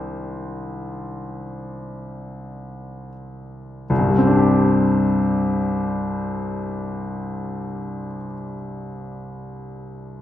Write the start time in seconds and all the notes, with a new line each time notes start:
Already playing: C2 D#3 C4 D4 A#4 C5 G5 C6
3.90 C2
3.99 G2
4.08 G3
4.18 C4
4.27 D4
4.37 G4